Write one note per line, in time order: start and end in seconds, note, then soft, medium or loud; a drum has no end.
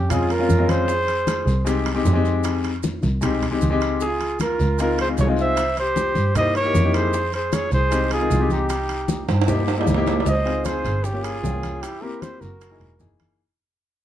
0.00 0.45 F2 medium
0.00 0.11 C#4 medium
0.00 0.12 G4 medium
0.09 0.30 G#3 medium
0.09 0.31 C4 medium
0.09 0.31 C#4 medium
0.09 0.31 F4 medium
0.09 0.33 G#4 medium
0.09 high bongo medium
0.09 high conga soft
0.09 low conga medium
0.09 high timbale loud
0.09 long guiro medium
0.09 maracas medium
0.30 0.72 F4 medium
0.30 0.71 A#4 loud
0.30 high bongo soft
0.30 high conga soft
0.30 high timbale medium
0.30 maracas soft
0.38 0.53 G#3 medium
0.38 0.53 C4 medium
0.38 0.53 C#4 medium
0.38 0.54 F4 medium
0.49 1.41 F2 medium
0.49 high bongo soft
0.49 low bongo medium
0.49 high conga medium
0.49 short guiro medium
0.49 maracas medium
0.58 0.88 G#3 medium
0.58 0.88 C4 medium
0.58 0.89 C#4 medium
0.58 0.89 F4 loud
0.68 1.87 G#4 medium
0.68 1.86 C5 loud
0.68 high conga medium
0.68 high timbale medium
0.68 short guiro medium
0.68 maracas soft
0.88 high bongo medium
0.88 high conga soft
0.88 long guiro medium
0.88 maracas medium
1.08 high conga soft
1.08 high timbale medium
1.08 maracas soft
1.27 high bongo medium
1.27 high conga medium
1.27 high timbale medium
1.27 short guiro medium
1.27 maracas medium
1.47 2.01 C2 medium
1.47 high bongo soft
1.47 short guiro medium
1.47 maracas soft
1.65 1.86 G#3 medium
1.65 1.87 C4 medium
1.65 1.87 D#4 medium
1.65 1.87 G4 loud
1.65 high bongo medium
1.65 high conga soft
1.65 high timbale medium
1.65 long guiro medium
1.65 maracas medium
1.85 high bongo soft
1.85 high conga soft
1.85 high timbale medium
1.85 maracas soft
1.94 2.09 G#3 medium
1.94 2.09 C4 medium
1.94 2.09 D#4 medium
1.94 2.10 G4 loud
2.05 2.97 F2 medium
2.05 high bongo soft
2.05 low bongo medium
2.05 high conga soft
2.05 low timbale medium
2.05 short guiro medium
2.05 maracas medium
2.13 2.69 G#3 loud
2.13 2.70 C4 medium
2.13 2.70 D#4 medium
2.13 2.70 G4 loud
2.25 high bongo soft
2.25 short guiro medium
2.25 maracas soft
2.44 high bongo medium
2.44 high conga soft
2.44 high timbale medium
2.44 long guiro medium
2.44 maracas medium
2.64 high conga soft
2.64 high timbale medium
2.64 maracas soft
2.83 high bongo medium
2.83 high conga medium
2.83 short guiro medium
2.83 maracas medium
3.03 3.58 C2 medium
3.03 high bongo soft
3.03 high conga medium
3.03 short guiro medium
3.03 maracas soft
3.21 3.42 G#3 medium
3.21 3.43 C4 medium
3.21 3.43 D#4 medium
3.21 3.44 G4 loud
3.21 high bongo medium
3.21 high conga soft
3.21 low conga medium
3.21 high timbale medium
3.21 long guiro medium
3.21 maracas medium
3.42 high bongo soft
3.42 high conga soft
3.42 low conga medium
3.42 high timbale medium
3.42 maracas soft
3.51 3.65 G#3 medium
3.51 3.65 C4 medium
3.51 3.66 D#4 medium
3.51 3.66 G4 medium
3.61 4.54 C#2 medium
3.61 high bongo soft
3.61 low bongo medium
3.61 high conga medium
3.61 short guiro medium
3.61 maracas medium
3.70 4.00 G#3 loud
3.70 4.01 C4 medium
3.70 4.01 D#4 medium
3.70 4.01 G4 loud
3.81 high bongo soft
3.81 high timbale loud
3.81 short guiro medium
3.81 maracas soft
4.00 4.38 F4 medium
4.00 4.38 G#4 medium
4.00 high bongo medium
4.00 high conga soft
4.00 long guiro medium
4.00 maracas medium
4.20 high conga soft
4.20 high timbale medium
4.20 maracas soft
4.39 4.77 F4 medium
4.39 4.77 A#4 medium
4.39 high bongo medium
4.39 high conga medium
4.39 high timbale medium
4.39 short guiro medium
4.39 maracas medium
4.59 5.15 C#2 medium
4.59 high bongo soft
4.59 short guiro medium
4.59 maracas soft
4.78 4.99 G#3 medium
4.78 4.99 C4 medium
4.78 5.00 D#4 medium
4.78 5.00 F4 medium
4.78 4.98 F4 medium
4.78 4.99 A#4 medium
4.78 high bongo medium
4.78 high conga soft
4.78 high timbale medium
4.78 long guiro medium
4.78 maracas medium
4.98 5.07 G#4 medium
4.98 5.09 C5 medium
4.98 high bongo soft
4.98 high conga soft
4.98 high timbale medium
4.98 maracas soft
5.07 5.21 G#3 medium
5.07 5.22 C4 medium
5.07 5.22 D#4 medium
5.07 5.22 F4 medium
5.17 6.10 C2 medium
5.17 5.26 G#4 medium
5.17 5.29 C#5 medium
5.17 high bongo soft
5.17 low bongo medium
5.17 low timbale medium
5.17 short guiro medium
5.17 maracas medium
5.27 5.57 G#3 medium
5.27 5.57 C4 medium
5.27 5.57 D#4 medium
5.27 5.58 F4 loud
5.37 5.75 C5 medium
5.37 high bongo soft
5.37 short guiro medium
5.37 maracas soft
5.41 5.76 E5 loud
5.57 high bongo medium
5.57 high conga soft
5.57 high timbale loud
5.57 long guiro medium
5.57 maracas medium
5.76 6.33 G4 medium
5.76 6.33 C5 loud
5.76 high conga soft
5.76 high timbale medium
5.76 maracas soft
5.95 high bongo medium
5.95 high conga medium
5.95 short guiro medium
5.95 maracas medium
6.15 6.70 G2 medium
6.15 high bongo soft
6.15 high conga medium
6.15 short guiro medium
6.15 maracas soft
6.34 6.55 A#3 medium
6.34 6.56 D#4 medium
6.34 6.56 E4 medium
6.34 6.56 G4 medium
6.34 6.55 C5 medium
6.34 6.55 D#5 loud
6.34 high bongo medium
6.34 high conga soft
6.34 low conga medium
6.34 high timbale medium
6.34 long guiro medium
6.34 maracas medium
6.55 6.97 A#4 medium
6.55 6.97 C#5 loud
6.55 high bongo soft
6.55 high conga soft
6.55 high timbale medium
6.55 maracas soft
6.64 6.78 A#3 medium
6.64 6.78 D#4 medium
6.64 6.79 E4 medium
6.64 6.79 G4 medium
6.74 7.66 F2 medium
6.74 high bongo soft
6.74 low bongo medium
6.74 high conga medium
6.74 short guiro medium
6.74 maracas medium
6.83 7.13 A#3 medium
6.83 7.13 D#4 medium
6.83 7.13 E4 medium
6.83 7.14 G4 loud
6.93 7.33 G#4 medium
6.93 7.34 C5 loud
6.93 high bongo soft
6.93 high timbale medium
6.93 short guiro medium
6.93 maracas soft
7.13 high bongo medium
7.13 high conga soft
7.13 long guiro medium
7.13 maracas medium
7.33 7.53 G#4 medium
7.33 7.55 C5 medium
7.33 high conga soft
7.33 high timbale medium
7.33 maracas soft
7.52 7.72 G#4 medium
7.52 7.73 C#5 medium
7.52 high bongo medium
7.52 high conga loud
7.52 high timbale medium
7.52 short guiro medium
7.52 maracas medium
7.71 8.27 C2 medium
7.71 8.09 G#4 medium
7.71 8.10 C5 medium
7.71 high bongo soft
7.71 short guiro medium
7.71 maracas soft
7.91 8.12 G#3 medium
7.91 8.12 C4 medium
7.91 8.12 D#4 medium
7.91 8.13 G4 medium
7.91 high bongo medium
7.91 high conga soft
7.91 high timbale medium
7.91 long guiro medium
7.91 maracas medium
8.11 8.54 F4 medium
8.11 8.53 G#4 medium
8.11 high bongo soft
8.11 high conga soft
8.11 high timbale medium
8.11 maracas soft
8.20 8.34 G#3 medium
8.20 8.34 C4 medium
8.20 8.35 D#4 medium
8.20 8.35 A#4 medium
8.30 9.23 C2 medium
8.30 high bongo soft
8.30 low bongo medium
8.30 high conga soft
8.30 short guiro medium
8.30 maracas medium
8.39 8.69 G#3 medium
8.39 8.69 C4 medium
8.39 8.70 D#4 medium
8.39 8.70 G4 medium
8.50 9.29 D#4 medium
8.50 9.29 G4 medium
8.50 high bongo soft
8.50 high conga medium
8.50 short guiro medium
8.50 maracas soft
8.69 high bongo medium
8.69 high conga soft
8.69 high timbale medium
8.69 long guiro medium
8.69 maracas medium
8.89 high conga soft
8.89 high timbale medium
8.89 maracas soft
9.08 high bongo medium
9.08 high conga loud
9.08 short guiro medium
9.08 maracas medium
9.28 9.83 G2 medium
9.28 high bongo soft
9.28 high conga medium
9.28 high timbale medium
9.28 short guiro medium
9.28 maracas soft
9.42 high timbale medium
9.47 9.68 A#3 medium
9.47 9.68 D#4 medium
9.47 9.69 E4 medium
9.47 9.69 G4 loud
9.47 high bongo loud
9.47 high conga soft
9.47 low conga medium
9.47 long guiro medium
9.47 maracas medium
9.55 low timbale medium
9.67 high bongo medium
9.67 high conga soft
9.67 high timbale loud
9.67 maracas soft
9.76 9.91 A#3 medium
9.76 9.91 D#4 medium
9.76 9.91 E4 medium
9.76 9.91 G4 medium
9.81 low timbale loud
9.87 10.21 C#2 medium
9.87 low bongo medium
9.87 high conga medium
9.87 short guiro medium
9.87 maracas medium
9.94 10.26 A#3 loud
9.94 10.26 D#4 medium
9.94 10.26 E4 medium
9.94 10.26 G4 loud
9.94 low timbale medium
10.06 low bongo medium
10.06 low timbale medium
10.06 short guiro medium
10.06 maracas soft
10.20 low timbale medium
10.26 10.81 C#2 medium
10.26 10.68 C5 medium
10.26 10.67 D#5 loud
10.26 high bongo medium
10.26 high conga soft
10.26 long guiro medium
10.26 maracas medium
10.44 10.93 C4 medium
10.44 10.93 D#4 medium
10.44 10.93 F4 medium
10.44 10.94 G#4 medium
10.44 high bongo soft
10.44 high conga soft
10.44 high timbale medium
10.65 11.06 G#4 medium
10.65 11.06 C5 loud
10.65 high bongo medium
10.65 high conga medium
10.65 high timbale medium
10.65 short guiro medium
10.65 maracas medium
10.84 11.39 G1 medium
10.84 high conga soft
10.84 high timbale medium
10.84 short guiro medium
10.84 maracas soft
11.04 11.26 C#4 medium
11.04 11.25 G4 medium
11.04 high bongo medium
11.04 high conga soft
11.04 long guiro medium
11.04 maracas medium
11.13 11.34 A#3 medium
11.13 11.35 C#4 medium
11.13 11.35 F4 medium
11.13 11.35 G4 medium
11.23 11.84 F4 medium
11.23 11.84 G#4 loud
11.23 high bongo soft
11.23 high conga soft
11.23 high timbale medium
11.23 maracas medium
11.42 11.78 C2 medium
11.42 11.82 A#3 medium
11.42 11.82 C#4 medium
11.42 11.83 F4 medium
11.42 11.83 G5 medium
11.42 high bongo soft
11.42 low bongo medium
11.42 high conga medium
11.42 low timbale medium
11.42 short guiro medium
11.42 maracas medium
11.63 high bongo soft
11.63 high conga medium
11.63 high timbale medium
11.63 short guiro medium
11.63 maracas soft
11.82 12.05 E4 medium
11.82 12.03 G4 medium
11.82 high bongo medium
11.82 high timbale medium
11.82 long guiro medium
11.82 maracas medium
12.01 12.49 A#3 medium
12.01 12.50 C4 medium
12.01 12.50 E4 medium
12.01 12.50 G4 medium
12.01 12.21 G4 medium
12.01 12.23 A#4 medium
12.01 high bongo soft
12.01 high conga soft
12.21 12.43 G4 medium
12.21 12.42 C5 medium
12.21 high bongo medium
12.21 high conga medium
12.21 high timbale medium
12.21 short guiro medium
12.21 maracas medium
12.41 12.78 F#1 medium
12.41 13.19 F#4 medium
12.41 13.19 A#4 medium
12.41 short guiro medium
12.41 maracas soft
12.61 high bongo medium
12.61 high conga soft
12.61 high timbale medium
12.61 long guiro medium
12.61 maracas medium
12.70 12.91 A#3 medium
12.70 12.91 D#4 medium
12.70 12.91 E4 medium
12.70 12.91 G#4 medium
12.80 12.98 E1 medium
12.80 high bongo soft
12.80 high conga soft
12.80 high timbale medium
12.99 13.34 F#1 medium
12.99 13.38 A#3 medium
12.99 13.38 D#4 medium
12.99 13.39 E4 medium
12.99 13.39 G#4 medium
12.99 high bongo soft
12.99 low bongo medium
12.99 high conga medium
12.99 short guiro medium
12.99 maracas medium
13.20 high bongo soft
13.20 high conga medium
13.20 high timbale medium
13.20 short guiro medium
13.20 maracas soft